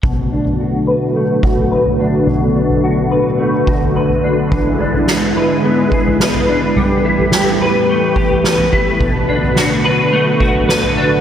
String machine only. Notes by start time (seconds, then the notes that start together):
0.02 D3 A3 F#4 B4
4.52 G#3 E4
6.76 E3 A3 G4
8.99 D3 A3 F#4